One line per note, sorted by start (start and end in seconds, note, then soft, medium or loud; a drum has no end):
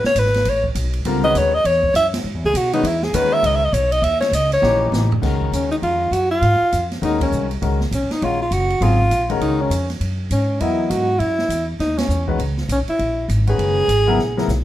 0.04 0.21 C#5 loud
0.04 muted upright bass stroke soft
0.04 snare medium
0.15 0.44 G#1 medium
0.15 0.51 B4 medium
0.15 hi-hat pedal soft
0.15 ride medium
0.25 snare soft
0.34 snare soft
0.34 ride soft
0.45 0.74 A1 medium
0.45 ride medium
0.49 0.66 C#5 medium
0.64 kick medium
0.75 1.04 B1 medium
0.75 hi-hat pedal medium
0.75 ride medium
0.93 ride soft
1.05 1.34 C#2 medium
1.05 1.22 D3 medium
1.05 1.22 G3 medium
1.05 1.22 C4 medium
1.05 1.22 F4 medium
1.05 1.23 A#4 medium
1.05 ride medium
1.24 1.50 D#3 medium
1.24 1.50 G#3 medium
1.24 1.50 C#4 medium
1.24 1.50 F#4 medium
1.24 1.50 B4 medium
1.24 1.40 D#5 loud
1.35 1.64 D#2 medium
1.35 1.56 C#5 medium
1.35 hi-hat pedal medium
1.35 ride medium
1.55 1.68 D#5 loud
1.64 1.93 E2 medium
1.64 1.95 C#5 medium
1.64 ride medium
1.83 kick medium
1.94 2.23 F#2 medium
1.94 2.07 E5 loud
1.94 hi-hat pedal medium
1.94 ride medium
2.13 snare medium
2.13 ride medium
2.24 2.34 G#2 medium
2.34 2.43 E2 medium
2.44 2.53 C#2 medium
2.44 2.59 G#4 loud
2.54 2.83 B2 medium
2.54 2.73 F#4 medium
2.54 hi-hat pedal medium
2.54 ride medium
2.73 2.83 D#3 medium
2.73 2.83 G#3 medium
2.73 2.84 C#4 medium
2.73 2.88 D#4 loud
2.73 2.83 F#4 medium
2.73 2.84 B4 medium
2.73 ride soft
2.83 3.12 E2 medium
2.83 3.05 E4 medium
2.83 ride medium
3.02 3.17 G#4 medium
3.02 snare soft
3.13 3.42 D#2 medium
3.13 3.59 D#3 medium
3.13 3.59 G#3 medium
3.13 3.59 C#4 medium
3.13 3.59 F#4 medium
3.13 3.59 B4 medium
3.13 3.35 B4 loud
3.13 hi-hat pedal medium
3.13 ride medium
3.33 3.47 E5 loud
3.43 3.72 C#2 medium
3.43 3.57 D#5 medium
3.43 ride medium
3.55 3.66 E5 loud
3.65 3.75 D#5 medium
3.73 4.01 B1 loud
3.73 3.93 C#5 medium
3.73 hi-hat pedal medium
3.73 ride medium
3.92 4.05 D#5 loud
3.92 ride medium
4.02 4.31 D#2 medium
4.02 4.20 E5 loud
4.02 ride medium
4.21 4.36 C#5 medium
4.21 snare medium
4.21 ride medium
4.31 4.61 C#2 medium
4.31 4.52 D#5 loud
4.31 hi-hat pedal medium
4.31 ride medium
4.52 4.91 C#5 loud
4.52 ride medium
4.62 4.91 A#1 medium
4.62 5.07 E3 medium
4.62 5.07 A#3 medium
4.62 5.07 C#4 medium
4.62 5.07 D#4 medium
4.62 5.07 G4 medium
4.62 snare medium
4.92 5.21 A1 loud
4.92 snare medium
4.92 hi-hat pedal medium
5.12 floor tom medium
5.22 5.51 C#2 medium
5.22 6.05 D#3 medium
5.22 6.05 G#3 soft
5.22 6.05 C#4 medium
5.22 6.05 F#4 medium
5.22 6.06 A#4 medium
5.22 kick medium
5.22 snare soft
5.22 crash medium
5.41 kick soft
5.52 5.81 D#2 medium
5.52 5.71 C#4 medium
5.52 hi-hat pedal medium
5.52 ride medium
5.71 5.76 D#4 medium
5.71 ride soft
5.82 6.11 F2 medium
5.82 6.14 F4 medium
5.82 ride soft
6.11 6.40 F#2 medium
6.11 6.31 F#4 loud
6.11 hi-hat pedal medium
6.11 ride medium
6.31 6.87 F4 loud
6.42 6.59 G#2 medium
6.42 ride medium
6.61 muted upright bass stroke soft
6.72 7.01 F2 medium
6.72 hi-hat pedal medium
6.72 ride medium
6.91 snare soft
6.91 ride soft
7.02 7.31 D#2 medium
7.02 7.46 D#3 medium
7.02 7.46 G#3 medium
7.02 7.47 C#4 medium
7.02 7.20 D#4 medium
7.02 7.47 F#4 medium
7.02 7.47 A#4 medium
7.02 ride medium
7.21 7.49 C#4 medium
7.21 kick medium
7.21 ride medium
7.32 7.61 C2 medium
7.32 hi-hat pedal soft
7.51 ride soft
7.62 7.91 C#2 medium
7.62 7.78 D#3 medium
7.62 7.78 G#3 soft
7.62 7.78 C#4 soft
7.62 7.79 F#4 medium
7.62 7.78 A#4 medium
7.62 ride medium
7.81 snare soft
7.91 8.08 B1 medium
7.91 8.14 C#4 medium
7.91 hi-hat pedal medium
7.91 ride medium
8.11 8.26 D#4 medium
8.11 muted upright bass stroke soft
8.11 snare soft
8.11 ride soft
8.22 8.50 A#1 medium
8.22 8.38 D#3 medium
8.22 8.38 G#3 soft
8.22 8.38 C#4 soft
8.22 8.41 F4 medium
8.22 8.39 F#4 soft
8.22 8.39 C#5 medium
8.22 ride medium
8.42 8.55 F4 medium
8.51 8.80 F#1 medium
8.51 8.84 F#4 loud
8.51 hi-hat pedal soft
8.51 ride medium
8.70 ride soft
8.81 9.10 G#1 medium
8.81 8.98 C#3 medium
8.81 8.98 F#3 medium
8.81 8.98 C4 medium
8.81 8.98 F4 medium
8.81 9.30 F4 loud
8.81 8.98 G#4 medium
8.81 ride medium
9.10 9.39 A#1 medium
9.10 hi-hat pedal medium
9.10 ride medium
9.30 9.68 D#3 medium
9.30 9.68 G#3 medium
9.30 9.68 C#4 medium
9.30 9.69 F#4 medium
9.30 9.69 A#4 medium
9.30 ride soft
9.40 9.69 C#2 medium
9.40 9.63 D#4 medium
9.40 ride medium
9.61 9.90 C#4 medium
9.70 9.99 F2 medium
9.70 hi-hat pedal medium
9.70 ride medium
9.89 snare soft
9.89 ride soft
10.00 10.29 F#2 medium
10.00 ride medium
10.31 10.59 G#2 medium
10.31 10.62 C#4 medium
10.31 hi-hat pedal medium
10.31 ride medium
10.60 10.89 E2 medium
10.60 11.05 F#3 soft
10.60 11.05 B3 soft
10.60 10.86 E4 medium
10.60 11.05 E4 soft
10.60 11.05 A#4 soft
10.60 11.05 D#5 medium
10.60 ride medium
10.86 10.92 E4 medium
10.90 11.19 G#2 medium
10.90 11.21 F#4 loud
10.90 hi-hat pedal medium
10.90 ride medium
11.19 11.48 F#2 medium
11.19 11.68 E4 medium
11.19 ride soft
11.39 snare soft
11.48 11.78 E2 medium
11.48 hi-hat pedal medium
11.48 ride medium
11.79 12.08 D#2 medium
11.79 11.99 D#4 medium
11.79 snare soft
11.79 ride soft
11.98 12.28 C#4 medium
11.98 snare medium
11.98 ride medium
12.09 12.38 E2 medium
12.09 hi-hat pedal medium
12.28 12.38 D#3 medium
12.28 12.38 G#3 medium
12.28 12.38 C#4 medium
12.28 12.39 F#4 medium
12.28 12.38 B4 medium
12.28 kick medium
12.39 12.68 C#2 medium
12.39 ride medium
12.57 snare soft
12.69 12.86 B1 medium
12.69 12.80 C#4 medium
12.69 hi-hat pedal medium
12.69 ride medium
12.88 13.27 E4 medium
12.88 muted upright bass stroke soft
12.88 ride soft
12.99 13.28 A#1 medium
12.99 ride soft
13.29 13.58 G#1 medium
13.29 hi-hat pedal soft
13.29 ride medium
13.47 13.86 D#3 medium
13.47 13.86 G#3 medium
13.47 13.86 C#4 soft
13.47 13.87 F#4 medium
13.47 14.45 G#4 loud
13.47 13.87 B4 medium
13.47 ride soft
13.59 13.88 F#1 medium
13.59 ride medium
13.88 14.17 G#1 medium
13.88 hi-hat pedal medium
13.88 ride medium
14.07 14.17 C#3 medium
14.07 14.17 F#3 medium
14.07 14.17 B3 medium
14.07 14.17 E4 medium
14.07 14.18 A#4 medium
14.18 14.47 A#1 medium
14.18 snare soft
14.37 14.47 C#3 medium
14.37 14.47 F#3 medium
14.37 14.47 B3 medium
14.37 14.48 E4 medium
14.37 14.48 A#4 medium
14.37 snare medium
14.48 14.64 B1 medium
14.48 snare soft
14.48 hi-hat pedal medium